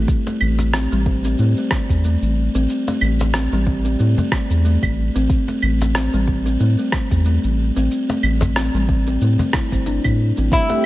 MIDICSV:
0, 0, Header, 1, 7, 480
1, 0, Start_track
1, 0, Key_signature, 0, "minor"
1, 0, Tempo, 652174
1, 60, Time_signature, 4, 2, 24, 8
1, 7991, End_track
2, 0, Start_track
2, 0, Title_t, "Oud"
2, 0, Program_c, 0, 24
2, 7748, Note_on_c, 0, 64, 109
2, 7991, Note_off_c, 0, 64, 0
2, 7991, End_track
3, 0, Start_track
3, 0, Title_t, "Analog synth pad"
3, 0, Program_c, 1, 89
3, 7741, Note_on_c, 1, 60, 61
3, 7741, Note_on_c, 1, 67, 80
3, 7742, Note_on_c, 1, 57, 71
3, 7991, Note_off_c, 1, 57, 0
3, 7991, Note_off_c, 1, 60, 0
3, 7991, Note_off_c, 1, 67, 0
3, 7991, End_track
4, 0, Start_track
4, 0, Title_t, "Kalimba"
4, 0, Program_c, 2, 108
4, 194, Note_on_c, 2, 57, 70
4, 530, Note_off_c, 2, 57, 0
4, 542, Note_on_c, 2, 60, 87
4, 663, Note_off_c, 2, 60, 0
4, 679, Note_on_c, 2, 55, 84
4, 777, Note_off_c, 2, 55, 0
4, 786, Note_on_c, 2, 60, 86
4, 911, Note_off_c, 2, 60, 0
4, 921, Note_on_c, 2, 60, 103
4, 1013, Note_off_c, 2, 60, 0
4, 1028, Note_on_c, 2, 57, 70
4, 1145, Note_off_c, 2, 57, 0
4, 1164, Note_on_c, 2, 57, 64
4, 1254, Note_off_c, 2, 57, 0
4, 1270, Note_on_c, 2, 60, 73
4, 1342, Note_off_c, 2, 60, 0
4, 1507, Note_on_c, 2, 57, 76
4, 1632, Note_off_c, 2, 57, 0
4, 1877, Note_on_c, 2, 60, 98
4, 2102, Note_off_c, 2, 60, 0
4, 2118, Note_on_c, 2, 57, 66
4, 2451, Note_off_c, 2, 57, 0
4, 2463, Note_on_c, 2, 60, 92
4, 2583, Note_off_c, 2, 60, 0
4, 2597, Note_on_c, 2, 55, 91
4, 2696, Note_off_c, 2, 55, 0
4, 2702, Note_on_c, 2, 60, 93
4, 2826, Note_off_c, 2, 60, 0
4, 2834, Note_on_c, 2, 60, 98
4, 2930, Note_off_c, 2, 60, 0
4, 2938, Note_on_c, 2, 57, 66
4, 3060, Note_off_c, 2, 57, 0
4, 3074, Note_on_c, 2, 57, 70
4, 3169, Note_off_c, 2, 57, 0
4, 3183, Note_on_c, 2, 60, 76
4, 3258, Note_off_c, 2, 60, 0
4, 3421, Note_on_c, 2, 57, 76
4, 3549, Note_off_c, 2, 57, 0
4, 3795, Note_on_c, 2, 60, 106
4, 3900, Note_off_c, 2, 60, 0
4, 4035, Note_on_c, 2, 57, 66
4, 4370, Note_off_c, 2, 57, 0
4, 4380, Note_on_c, 2, 60, 100
4, 4501, Note_off_c, 2, 60, 0
4, 4517, Note_on_c, 2, 55, 94
4, 4616, Note_off_c, 2, 55, 0
4, 4621, Note_on_c, 2, 60, 89
4, 4745, Note_off_c, 2, 60, 0
4, 4754, Note_on_c, 2, 60, 104
4, 4849, Note_off_c, 2, 60, 0
4, 4860, Note_on_c, 2, 57, 71
4, 4981, Note_off_c, 2, 57, 0
4, 4994, Note_on_c, 2, 57, 68
4, 5089, Note_off_c, 2, 57, 0
4, 5098, Note_on_c, 2, 60, 73
4, 5176, Note_off_c, 2, 60, 0
4, 5340, Note_on_c, 2, 57, 75
4, 5468, Note_off_c, 2, 57, 0
4, 5714, Note_on_c, 2, 60, 98
4, 5941, Note_off_c, 2, 60, 0
4, 5956, Note_on_c, 2, 57, 68
4, 6290, Note_off_c, 2, 57, 0
4, 6304, Note_on_c, 2, 60, 95
4, 6423, Note_off_c, 2, 60, 0
4, 6439, Note_on_c, 2, 55, 85
4, 6537, Note_off_c, 2, 55, 0
4, 6544, Note_on_c, 2, 60, 89
4, 6670, Note_off_c, 2, 60, 0
4, 6680, Note_on_c, 2, 60, 101
4, 6772, Note_off_c, 2, 60, 0
4, 6785, Note_on_c, 2, 57, 68
4, 6904, Note_off_c, 2, 57, 0
4, 6918, Note_on_c, 2, 57, 70
4, 7011, Note_off_c, 2, 57, 0
4, 7023, Note_on_c, 2, 64, 72
4, 7149, Note_off_c, 2, 64, 0
4, 7156, Note_on_c, 2, 60, 84
4, 7215, Note_off_c, 2, 60, 0
4, 7264, Note_on_c, 2, 62, 76
4, 7383, Note_off_c, 2, 62, 0
4, 7638, Note_on_c, 2, 60, 76
4, 7737, Note_off_c, 2, 60, 0
4, 7878, Note_on_c, 2, 57, 71
4, 7991, Note_off_c, 2, 57, 0
4, 7991, End_track
5, 0, Start_track
5, 0, Title_t, "Analog synth bass"
5, 0, Program_c, 3, 38
5, 304, Note_on_c, 3, 33, 91
5, 643, Note_off_c, 3, 33, 0
5, 678, Note_on_c, 3, 33, 100
5, 996, Note_off_c, 3, 33, 0
5, 1022, Note_on_c, 3, 45, 84
5, 1135, Note_off_c, 3, 45, 0
5, 1395, Note_on_c, 3, 40, 101
5, 1593, Note_off_c, 3, 40, 0
5, 1634, Note_on_c, 3, 33, 99
5, 1832, Note_off_c, 3, 33, 0
5, 1875, Note_on_c, 3, 33, 84
5, 1964, Note_off_c, 3, 33, 0
5, 2219, Note_on_c, 3, 33, 96
5, 2561, Note_off_c, 3, 33, 0
5, 2592, Note_on_c, 3, 33, 98
5, 2913, Note_off_c, 3, 33, 0
5, 2943, Note_on_c, 3, 45, 84
5, 3055, Note_off_c, 3, 45, 0
5, 3313, Note_on_c, 3, 40, 101
5, 3512, Note_off_c, 3, 40, 0
5, 3554, Note_on_c, 3, 33, 102
5, 3752, Note_off_c, 3, 33, 0
5, 3794, Note_on_c, 3, 33, 78
5, 3884, Note_off_c, 3, 33, 0
5, 4141, Note_on_c, 3, 33, 92
5, 4482, Note_off_c, 3, 33, 0
5, 4515, Note_on_c, 3, 33, 99
5, 4834, Note_off_c, 3, 33, 0
5, 4859, Note_on_c, 3, 45, 80
5, 4973, Note_off_c, 3, 45, 0
5, 5235, Note_on_c, 3, 40, 95
5, 5433, Note_off_c, 3, 40, 0
5, 5476, Note_on_c, 3, 33, 96
5, 5673, Note_off_c, 3, 33, 0
5, 5715, Note_on_c, 3, 33, 80
5, 5804, Note_off_c, 3, 33, 0
5, 6058, Note_on_c, 3, 33, 98
5, 6400, Note_off_c, 3, 33, 0
5, 6432, Note_on_c, 3, 33, 107
5, 6752, Note_off_c, 3, 33, 0
5, 6781, Note_on_c, 3, 45, 81
5, 6894, Note_off_c, 3, 45, 0
5, 7157, Note_on_c, 3, 31, 84
5, 7354, Note_off_c, 3, 31, 0
5, 7396, Note_on_c, 3, 45, 94
5, 7594, Note_off_c, 3, 45, 0
5, 7639, Note_on_c, 3, 33, 83
5, 7726, Note_off_c, 3, 33, 0
5, 7991, End_track
6, 0, Start_track
6, 0, Title_t, "Cajon"
6, 197, Note_on_c, 9, 38, 68
6, 271, Note_off_c, 9, 38, 0
6, 431, Note_on_c, 9, 38, 70
6, 504, Note_off_c, 9, 38, 0
6, 2119, Note_on_c, 9, 38, 70
6, 2193, Note_off_c, 9, 38, 0
6, 2362, Note_on_c, 9, 38, 72
6, 2436, Note_off_c, 9, 38, 0
6, 3077, Note_on_c, 9, 36, 68
6, 3150, Note_off_c, 9, 36, 0
6, 4034, Note_on_c, 9, 38, 62
6, 4108, Note_off_c, 9, 38, 0
6, 4281, Note_on_c, 9, 38, 74
6, 4355, Note_off_c, 9, 38, 0
6, 5959, Note_on_c, 9, 38, 74
6, 6033, Note_off_c, 9, 38, 0
6, 6189, Note_on_c, 9, 38, 71
6, 6197, Note_on_c, 9, 36, 86
6, 6262, Note_off_c, 9, 38, 0
6, 6271, Note_off_c, 9, 36, 0
6, 6913, Note_on_c, 9, 36, 77
6, 6986, Note_off_c, 9, 36, 0
6, 7017, Note_on_c, 9, 38, 61
6, 7091, Note_off_c, 9, 38, 0
6, 7257, Note_on_c, 9, 38, 54
6, 7331, Note_off_c, 9, 38, 0
6, 7873, Note_on_c, 9, 38, 66
6, 7947, Note_off_c, 9, 38, 0
6, 7991, End_track
7, 0, Start_track
7, 0, Title_t, "Drums"
7, 59, Note_on_c, 9, 82, 51
7, 60, Note_on_c, 9, 36, 105
7, 133, Note_off_c, 9, 36, 0
7, 133, Note_off_c, 9, 82, 0
7, 194, Note_on_c, 9, 82, 31
7, 268, Note_off_c, 9, 82, 0
7, 299, Note_on_c, 9, 75, 75
7, 372, Note_off_c, 9, 75, 0
7, 435, Note_on_c, 9, 82, 64
7, 508, Note_off_c, 9, 82, 0
7, 541, Note_on_c, 9, 37, 70
7, 541, Note_on_c, 9, 82, 54
7, 614, Note_off_c, 9, 37, 0
7, 615, Note_off_c, 9, 82, 0
7, 674, Note_on_c, 9, 82, 30
7, 748, Note_off_c, 9, 82, 0
7, 780, Note_on_c, 9, 36, 94
7, 853, Note_off_c, 9, 36, 0
7, 912, Note_on_c, 9, 82, 65
7, 986, Note_off_c, 9, 82, 0
7, 1018, Note_on_c, 9, 82, 50
7, 1091, Note_off_c, 9, 82, 0
7, 1153, Note_on_c, 9, 82, 29
7, 1226, Note_off_c, 9, 82, 0
7, 1256, Note_on_c, 9, 37, 70
7, 1256, Note_on_c, 9, 75, 70
7, 1260, Note_on_c, 9, 36, 97
7, 1330, Note_off_c, 9, 37, 0
7, 1330, Note_off_c, 9, 75, 0
7, 1333, Note_off_c, 9, 36, 0
7, 1394, Note_on_c, 9, 36, 57
7, 1394, Note_on_c, 9, 82, 58
7, 1468, Note_off_c, 9, 36, 0
7, 1468, Note_off_c, 9, 82, 0
7, 1501, Note_on_c, 9, 82, 54
7, 1574, Note_off_c, 9, 82, 0
7, 1635, Note_on_c, 9, 82, 32
7, 1709, Note_off_c, 9, 82, 0
7, 1873, Note_on_c, 9, 82, 66
7, 1947, Note_off_c, 9, 82, 0
7, 1980, Note_on_c, 9, 82, 46
7, 2054, Note_off_c, 9, 82, 0
7, 2115, Note_on_c, 9, 82, 30
7, 2188, Note_off_c, 9, 82, 0
7, 2217, Note_on_c, 9, 75, 79
7, 2291, Note_off_c, 9, 75, 0
7, 2353, Note_on_c, 9, 82, 65
7, 2427, Note_off_c, 9, 82, 0
7, 2456, Note_on_c, 9, 37, 76
7, 2457, Note_on_c, 9, 82, 51
7, 2530, Note_off_c, 9, 37, 0
7, 2530, Note_off_c, 9, 82, 0
7, 2592, Note_on_c, 9, 82, 29
7, 2665, Note_off_c, 9, 82, 0
7, 2698, Note_on_c, 9, 36, 88
7, 2772, Note_off_c, 9, 36, 0
7, 2832, Note_on_c, 9, 82, 62
7, 2905, Note_off_c, 9, 82, 0
7, 2939, Note_on_c, 9, 82, 50
7, 3012, Note_off_c, 9, 82, 0
7, 3073, Note_on_c, 9, 82, 30
7, 3146, Note_off_c, 9, 82, 0
7, 3178, Note_on_c, 9, 36, 93
7, 3178, Note_on_c, 9, 37, 70
7, 3178, Note_on_c, 9, 75, 77
7, 3252, Note_off_c, 9, 36, 0
7, 3252, Note_off_c, 9, 37, 0
7, 3252, Note_off_c, 9, 75, 0
7, 3313, Note_on_c, 9, 82, 63
7, 3387, Note_off_c, 9, 82, 0
7, 3421, Note_on_c, 9, 82, 52
7, 3495, Note_off_c, 9, 82, 0
7, 3553, Note_on_c, 9, 36, 57
7, 3554, Note_on_c, 9, 75, 78
7, 3555, Note_on_c, 9, 82, 30
7, 3626, Note_off_c, 9, 36, 0
7, 3628, Note_off_c, 9, 75, 0
7, 3628, Note_off_c, 9, 82, 0
7, 3793, Note_on_c, 9, 82, 57
7, 3867, Note_off_c, 9, 82, 0
7, 3897, Note_on_c, 9, 82, 48
7, 3898, Note_on_c, 9, 36, 111
7, 3971, Note_off_c, 9, 36, 0
7, 3971, Note_off_c, 9, 82, 0
7, 4034, Note_on_c, 9, 82, 29
7, 4107, Note_off_c, 9, 82, 0
7, 4139, Note_on_c, 9, 75, 77
7, 4213, Note_off_c, 9, 75, 0
7, 4274, Note_on_c, 9, 82, 64
7, 4347, Note_off_c, 9, 82, 0
7, 4379, Note_on_c, 9, 37, 72
7, 4379, Note_on_c, 9, 82, 49
7, 4452, Note_off_c, 9, 37, 0
7, 4453, Note_off_c, 9, 82, 0
7, 4512, Note_on_c, 9, 82, 31
7, 4586, Note_off_c, 9, 82, 0
7, 4618, Note_on_c, 9, 36, 84
7, 4692, Note_off_c, 9, 36, 0
7, 4751, Note_on_c, 9, 82, 58
7, 4825, Note_off_c, 9, 82, 0
7, 4857, Note_on_c, 9, 82, 50
7, 4930, Note_off_c, 9, 82, 0
7, 4991, Note_on_c, 9, 82, 30
7, 5065, Note_off_c, 9, 82, 0
7, 5096, Note_on_c, 9, 37, 72
7, 5096, Note_on_c, 9, 75, 79
7, 5099, Note_on_c, 9, 36, 95
7, 5169, Note_off_c, 9, 37, 0
7, 5169, Note_off_c, 9, 75, 0
7, 5173, Note_off_c, 9, 36, 0
7, 5231, Note_on_c, 9, 82, 64
7, 5234, Note_on_c, 9, 36, 50
7, 5304, Note_off_c, 9, 82, 0
7, 5308, Note_off_c, 9, 36, 0
7, 5335, Note_on_c, 9, 82, 48
7, 5409, Note_off_c, 9, 82, 0
7, 5472, Note_on_c, 9, 82, 31
7, 5545, Note_off_c, 9, 82, 0
7, 5712, Note_on_c, 9, 82, 56
7, 5786, Note_off_c, 9, 82, 0
7, 5821, Note_on_c, 9, 82, 49
7, 5894, Note_off_c, 9, 82, 0
7, 5954, Note_on_c, 9, 82, 29
7, 6027, Note_off_c, 9, 82, 0
7, 6059, Note_on_c, 9, 75, 75
7, 6132, Note_off_c, 9, 75, 0
7, 6196, Note_on_c, 9, 82, 59
7, 6270, Note_off_c, 9, 82, 0
7, 6301, Note_on_c, 9, 37, 77
7, 6301, Note_on_c, 9, 82, 48
7, 6374, Note_off_c, 9, 37, 0
7, 6375, Note_off_c, 9, 82, 0
7, 6434, Note_on_c, 9, 82, 31
7, 6507, Note_off_c, 9, 82, 0
7, 6540, Note_on_c, 9, 36, 94
7, 6614, Note_off_c, 9, 36, 0
7, 6673, Note_on_c, 9, 82, 60
7, 6746, Note_off_c, 9, 82, 0
7, 6779, Note_on_c, 9, 82, 50
7, 6853, Note_off_c, 9, 82, 0
7, 6913, Note_on_c, 9, 82, 31
7, 6986, Note_off_c, 9, 82, 0
7, 7016, Note_on_c, 9, 37, 73
7, 7016, Note_on_c, 9, 75, 72
7, 7020, Note_on_c, 9, 36, 93
7, 7089, Note_off_c, 9, 37, 0
7, 7089, Note_off_c, 9, 75, 0
7, 7094, Note_off_c, 9, 36, 0
7, 7153, Note_on_c, 9, 82, 60
7, 7155, Note_on_c, 9, 36, 50
7, 7226, Note_off_c, 9, 82, 0
7, 7229, Note_off_c, 9, 36, 0
7, 7258, Note_on_c, 9, 82, 52
7, 7331, Note_off_c, 9, 82, 0
7, 7392, Note_on_c, 9, 75, 78
7, 7393, Note_on_c, 9, 82, 33
7, 7395, Note_on_c, 9, 36, 55
7, 7466, Note_off_c, 9, 75, 0
7, 7466, Note_off_c, 9, 82, 0
7, 7469, Note_off_c, 9, 36, 0
7, 7631, Note_on_c, 9, 82, 61
7, 7705, Note_off_c, 9, 82, 0
7, 7738, Note_on_c, 9, 82, 50
7, 7740, Note_on_c, 9, 36, 108
7, 7812, Note_off_c, 9, 82, 0
7, 7814, Note_off_c, 9, 36, 0
7, 7872, Note_on_c, 9, 82, 31
7, 7945, Note_off_c, 9, 82, 0
7, 7991, End_track
0, 0, End_of_file